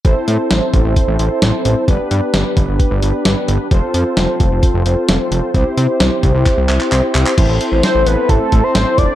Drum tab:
CC |----------------|----------------|----------------|----------------|
HH |x-x-x-x-x-x-x-x-|x-x-x-x-x-x-x-x-|x-x-x-x-x-x-x-x-|x-x-x-x-x-x-x-x-|
CP |----------------|----------------|----------------|--------x-xxx-xx|
SD |----o-------o---|----o-------o---|----o-------o---|----o-----------|
BD |o-----o-o-------|o-----o-o-------|o-----o-o-------|o-----o-o-------|

CC |x---------------|
HH |x-x-x-x-x-x-x-x-|
CP |----------------|
SD |----o-------o---|
BD |o-------o-o---o-|